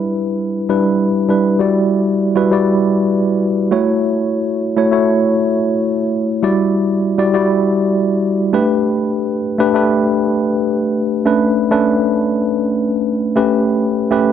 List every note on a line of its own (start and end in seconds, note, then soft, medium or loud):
0.00 0.69 G3 medium
0.00 0.69 D4 medium
0.00 0.70 E4 medium
0.00 0.70 B4 medium
0.69 1.06 G3 medium
0.69 1.06 D4 medium
0.69 1.06 E4 medium
0.69 1.06 B4 medium
1.29 1.48 G3 medium
1.29 1.48 D4 medium
1.29 1.48 E4 medium
1.29 1.48 B4 medium
1.59 2.06 G3 medium
1.59 2.06 E4 medium
1.59 2.06 F#4 medium
1.59 2.06 D5 medium
2.35 2.45 G3 medium
2.35 2.45 E4 medium
2.35 2.45 F#4 medium
2.35 2.46 B4 medium
2.52 3.24 G3 medium
2.52 3.25 E4 medium
2.52 3.25 F#4 medium
2.52 3.25 D5 medium
3.71 4.56 A3 medium
3.71 4.56 E4 medium
3.71 4.57 F#4 medium
3.71 4.57 C#5 medium
4.76 4.86 A3 medium
4.76 4.87 E4 medium
4.76 4.87 F#4 medium
4.76 4.87 C#5 medium
4.92 5.65 A3 medium
4.92 5.66 E4 medium
4.92 5.66 F#4 medium
4.92 5.66 C#5 medium
6.43 6.89 G3 medium
6.43 6.89 E4 medium
6.43 6.89 F#4 medium
6.43 6.90 D5 loud
7.18 7.28 G3 medium
7.18 7.28 E4 medium
7.18 7.28 F#4 medium
7.18 7.28 D5 medium
7.33 8.07 G3 medium
7.33 8.07 E4 medium
7.33 8.07 F#4 medium
7.33 8.07 D5 medium
8.53 9.39 A3 medium
8.53 9.39 D4 medium
8.53 9.39 G4 medium
8.53 9.39 B4 loud
9.58 9.69 A3 medium
9.58 9.69 D4 medium
9.58 9.70 G4 medium
9.58 9.70 B4 loud
9.74 10.48 A3 medium
9.74 10.48 D4 medium
9.74 10.48 G4 medium
9.74 10.49 B4 medium
11.25 11.53 A3 medium
11.25 11.53 C#4 medium
11.25 11.54 D4 medium
11.25 11.54 B4 medium
11.71 12.44 A3 medium
11.71 12.44 C#4 medium
11.71 12.44 D4 medium
11.71 12.45 B4 medium
13.36 13.97 A3 medium
13.36 13.97 C#4 medium
13.36 13.97 G4 medium
13.36 13.97 B4 medium
14.11 14.32 A3 medium
14.11 14.32 C#4 medium
14.11 14.32 G4 medium
14.11 14.32 B4 loud